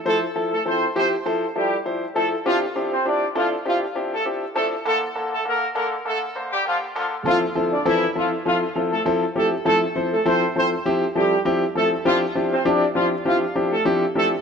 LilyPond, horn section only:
\new Staff \with { instrumentName = "Horn section" } { \time 4/4 \key f \major \tempo 4 = 100 <a a'>16 r8 <a a'>16 <c' c''>8 <c' c''>16 r8. <g g'>8 r8 <a a'>16 r16 | <f f'>16 r8 <c' c''>16 <d' d''>8 <f f'>16 r16 <f f'>16 r8 <a a'>16 r8 <a a'>16 r16 | <a a'>16 r8 <a a'>16 <bes bes'>8 <bes bes'>16 r16 <a a'>16 r8 <g g'>16 <f f'>16 r16 <f f'>16 r16 | <f f'>16 r8 <d' d''>16 <e e'>8 <f f'>16 r16 <f f'>16 r8 <a a'>16 r8 <a a'>16 r16 |
<a a'>16 r8 <a a'>16 <c' c''>8 <c' c''>16 r8. <g g'>8 r8 <a a'>16 r16 | <f f'>16 r8 <c' c''>16 <d' d''>8 <f f'>16 r16 <f f'>16 r8 <a a'>16 r8 <a a'>16 r16 | }